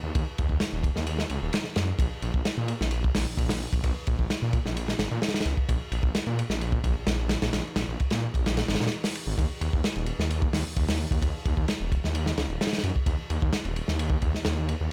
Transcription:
0.03 D#2
0.15 D#2, kick, ride
0.38 D#2, kick, ride
0.49 D#2, kick
0.60 snare, ride
0.73 D#1
0.83 kick, ride
0.96 D#2, snare
1.07 ride
1.19 snare
1.29 C#2, ride
1.42 D#1
1.53 snare, ride
1.64 snare
1.76 F#2, snare, ride
1.99 A#1, kick, ride
2.22 A#1, ride
2.34 A#1, kick
2.45 snare, ride
2.57 A#2, ride
2.68 ride
2.81 A#1, snare
2.91 ride
3.04 kick
3.15 A#1, snare, open hi-hat
3.27 A#1
3.37 A#1, kick, ride
3.49 snare, open hi-hat
3.73 A#1, kick, ride
3.84 A#1, kick, ride
4.07 A#1, kick, ride
4.19 A#1, kick
4.30 snare, ride
4.42 A#2
4.53 kick, ride
4.65 A#1, snare
4.77 ride
4.88 snare
4.99 G#1, snare, ride
5.11 A#2, ride
5.22 snare, ride
5.28 snare, ride
5.34 snare, ride
5.41 snare, ride
5.45 C#2, ride
5.57 kick
5.69 A#1, kick, ride
5.92 A#1, ride
6.03 A#1, kick
6.15 snare, ride
6.26 A#2, ride
6.39 ride
6.50 A#1, snare
6.61 ride
6.72 kick
6.84 A#1, kick, ride
6.96 A#1
7.07 A#1, snare, ride
7.29 snare, ride
7.42 A#1, snare, ride
7.53 A#1, snare, ride
7.76 A#1, snare, ride
7.88 A#1
8.00 kick, ride
8.10 A#2, snare, ride
8.34 A#1, kick, ride
8.46 snare, ride
8.57 snare, ride
8.68 G#1, snare, ride
8.75 snare, ride
8.80 A#2, snare, ride
8.87 snare, ride
8.92 ride
9.04 snare, open hi-hat
9.15 ride
9.27 G#1
9.38 D#2, kick, ride
9.61 D#2, ride
9.73 D#2, kick
9.84 snare, ride
9.96 D#1, ride
10.06 ride
10.19 D#2, snare
10.30 ride
10.42 kick
10.53 D#2, snare, open hi-hat
10.65 D#2
10.77 D#2, kick, ride
10.88 snare, open hi-hat
11.11 D#2, kick, ride
11.22 D#2, kick, ride
11.45 D#2, kick, ride
11.57 D#2, kick
11.68 snare, ride
11.80 D#1
11.92 kick, ride
12.03 D#2, snare
12.15 ride
12.26 snare
12.37 C#2, snare, ride
12.49 D#1, ride
12.61 snare, ride
12.67 snare, ride
12.73 snare, ride
12.78 snare, ride
12.84 F#2, ride
12.96 kick
13.06 D#2, kick, ride
13.30 D#2, ride
13.42 D#2, kick
13.53 snare, ride
13.65 D#1, ride
13.76 ride
13.88 D#2, snare
13.99 ride
14.10 kick
14.22 D#2, kick, ride
14.35 D#2, snare
14.45 D#2, snare, ride
14.69 ride
14.81 D#2

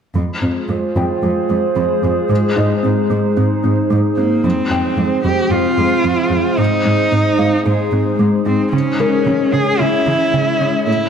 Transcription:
0.15 F2 F3 G#3 F4 G#4 C5
0.42 F2 C4
0.69 F2 G#3
0.96 F2 F3 G5
1.23 F2 G#3
1.50 F2 G#3
1.76 F2 F3
2.03 F2 G#3
2.30 G#2 G#3 D#4
2.56 G#2 D#4 D#5
2.83 G#2 C4
3.10 G#2 G#3
3.37 G#2 C4
3.64 G#2 C4
3.90 G#2 G#3
4.16 G#2 A#3 C4
4.44 F2 F3 G#3 C4 G#4 C5
4.71 F2 C4 G5
4.98 F2 G#3
5.24 F2 F3 G4
5.51 F2 F4
5.77 F2 G#3
6.04 F2 F3
6.31 F2 C4
6.58 G#2 G#3 D#4
6.85 G#2 D#4
7.12 G#2 C4
7.38 G#2 G#3 F5
7.66 G#2 G#3 G#4
7.92 G#2 C4
8.19 G#2 G#3
8.46 G#2 C4 D#4
8.72 C#3 C#4 C#5
8.99 C#3 G#3 A#4
9.26 C#3 E3 C#4 C#5
9.53 C#3 G#4
9.79 C#3 C#4 E4
10.07 C#3 E3
10.34 C#3
10.60 C#3 G#3
10.87 A2 A3 C4 E4 A4

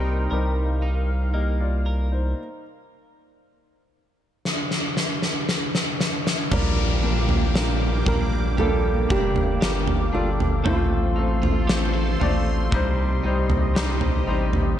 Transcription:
Already playing: C2 C3 G3 A#3 C4 D#4 G4 A#4 C5 G5 C6
0.31 C2 G3 C4 D#4 A#4 F5
0.82 D#4
1.34 A#3 G4 D#5
1.60 F4 D5
1.86 A#4
2.12 D#4 C5
4.45 snare
4.71 snare
4.97 snare
5.22 snare
5.49 snare
5.75 snare
6.00 snare
6.27 snare
6.49 A#1 A#2 G3 A#3 D4 F4 G4 A#4 D5 F5 G5 D6, kick, floor tom, crash, downlifter
7.02 G3 D4 F4 A#4
7.29 floor tom
7.54 G3 D4 F4 G4 A#4, snare
8.06 A#1 G3 D4 F4 A#4, kick, floor tom
8.57 G3 A#3 D4 F4 G4 A4, floor tom
9.09 F1 G3 D4 F4 G4 A#4, kick
9.36 floor tom
9.61 G1 G3 D4 F4 G4 A#4, snare
9.88 floor tom
10.13 G1 G3 D4 F4 A4
10.40 floor tom
10.64 A1 A2 A3 C4 F4 A4 C5 C6, floor tom
11.16 A3 C4 D#4 F4 A4
11.42 F4, floor tom
11.67 A3 C4 F4 G4 C5, snare
11.94 A4
12.20 A1 A3 C4 F4 D5, floor tom
12.70 C2 C3 G3 C4 D#4 G4 C5 D#5, kick, floor tom
13.23 C2 G3 C4 D#4 C5
13.50 floor tom
13.75 G3 C4 D#4 G4 C5, snare
14.01 floor tom
14.27 A1 G3 C4 D#4 C5
14.53 floor tom

